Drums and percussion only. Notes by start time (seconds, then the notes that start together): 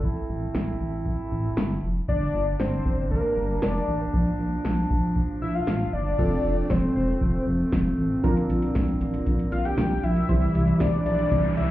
0.03 kick
0.55 snare
1.06 kick
1.57 snare
2.08 kick
2.60 snare
2.85 kick
3.11 kick
3.62 snare
4.14 kick
4.65 snare
4.90 kick
5.16 kick
5.67 snare
6.19 kick, crash
6.70 kick, snare
7.21 kick
7.72 kick, snare
8.24 kick, closed hi-hat
8.37 closed hi-hat
8.50 closed hi-hat
8.62 closed hi-hat
8.75 kick, snare, closed hi-hat
8.88 closed hi-hat
9.01 closed hi-hat
9.14 closed hi-hat
9.26 kick, closed hi-hat
9.39 closed hi-hat
9.52 closed hi-hat
9.65 closed hi-hat
9.78 kick, snare, closed hi-hat
9.91 closed hi-hat
10.03 closed hi-hat
10.16 closed hi-hat
10.29 kick, closed hi-hat
10.42 closed hi-hat
10.55 closed hi-hat
10.67 closed hi-hat
10.80 kick, snare, closed hi-hat
10.93 closed hi-hat
11.06 closed hi-hat
11.19 closed hi-hat
11.31 kick, closed hi-hat
11.44 closed hi-hat
11.57 closed hi-hat